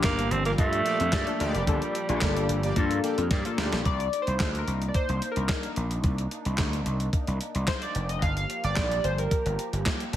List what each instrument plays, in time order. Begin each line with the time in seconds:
Already playing: analog synth pad A#2 F3 G4, analog polysynth A#3 D4 F4 G4
0.03 slap bass G1, alto saxophone A#3, kick, snare, clap, closed hi-hat
0.19 closed hi-hat
0.31 slap bass G1, alto saxophone C4, closed hi-hat
0.45 analog polysynth G3 F4 A#4, alto saxophone A#3, closed hi-hat
0.58 slap bass G2, analog polysynth G3 D4 F4 A4, alto saxophone A3, kick, closed hi-hat
0.73 closed hi-hat
0.85 analog polysynth A#3 G4 D5, closed hi-hat
1.00 slap bass F2, closed hi-hat
1.13 slap bass G2, analog polysynth A#3 G4 D5, kick, snare, clap, closed hi-hat
1.27 analog polysynth A#3 D4 F4 A4, closed hi-hat
1.40 slap bass D2, alto saxophone G3, analog polysynth A#3 G4 D5, closed hi-hat
1.55 slap bass F1, closed hi-hat
1.67 slap bass G1, analog polysynth A#3 D4 F4 A4, kick, closed hi-hat
1.82 closed hi-hat
1.95 closed hi-hat
2.09 slap bass A#1, analog polysynth A#3 D4 F4 G#4, closed hi-hat
2.16 analog polysynth A4
2.21 slap bass G1, kick, snare, clap, closed hi-hat
2.37 closed hi-hat
2.49 slap bass G1, closed hi-hat
2.63 analog polysynth A#3 G4 D5, closed hi-hat
2.76 slap bass G2, analog polysynth A#3 D4 F4 A4, kick, closed hi-hat
2.91 closed hi-hat
3.04 analog polysynth A#3 G4 D5, closed hi-hat
3.18 slap bass F2, closed hi-hat
3.31 slap bass G2, analog polysynth A#3 G4 D5, kick, snare, closed hi-hat
3.45 analog polysynth A#3 D4 F4 A4, closed hi-hat
3.58 slap bass D2, analog polysynth A#3 G4 D5, snare, closed hi-hat
3.72 slap bass A#1, snare, closed hi-hat
3.85 slap bass C2, analog synth pad A#3 D4 D#4, analog polysynth D5, kick, closed hi-hat
4.00 closed hi-hat
4.13 closed hi-hat
4.22 analog polysynth C5
4.27 slap bass C2, closed hi-hat
4.40 slap bass D2, kick, snare, clap, closed hi-hat
4.55 analog polysynth A#4, closed hi-hat
4.67 slap bass C2, closed hi-hat
4.82 closed hi-hat
4.88 analog polysynth D5
4.94 analog polysynth C5, kick, closed hi-hat
5.09 slap bass C2, closed hi-hat
5.22 closed hi-hat
5.32 analog polysynth A#4
5.36 slap bass C2, closed hi-hat
5.49 kick, snare, clap, closed hi-hat
5.63 closed hi-hat
5.76 slap bass A#1, closed hi-hat
5.91 closed hi-hat
6.04 slap bass C2, kick, closed hi-hat
6.18 closed hi-hat
6.31 closed hi-hat
6.45 slap bass C2, closed hi-hat
6.58 slap bass D2, kick, snare, clap, closed hi-hat
6.73 closed hi-hat
6.86 slap bass C2, closed hi-hat
7.00 closed hi-hat
7.13 kick, closed hi-hat
7.27 slap bass C2, closed hi-hat
7.41 closed hi-hat
7.55 slap bass C2, closed hi-hat
7.67 analog polysynth C5, kick, snare, clap, closed hi-hat
7.82 analog polysynth D5, closed hi-hat
7.95 slap bass F1, closed hi-hat
8.09 analog polysynth D#5, closed hi-hat
8.22 slap bass G1, analog synth pad F3 G4, analog polysynth F5, kick, closed hi-hat
8.37 analog polysynth F5, closed hi-hat
8.50 closed hi-hat
8.64 slap bass G1, analog polysynth D5, closed hi-hat
8.76 slap bass A#1, kick, snare, clap, closed hi-hat
8.91 closed hi-hat
9.04 slap bass G1, analog polysynth C5, closed hi-hat
9.18 analog polysynth A#4, closed hi-hat
9.31 kick, closed hi-hat
9.46 slap bass G1, closed hi-hat
9.59 closed hi-hat
9.73 slap bass G1, closed hi-hat
9.86 kick, snare, clap, closed hi-hat
10.00 closed hi-hat
10.13 slap bass F1, closed hi-hat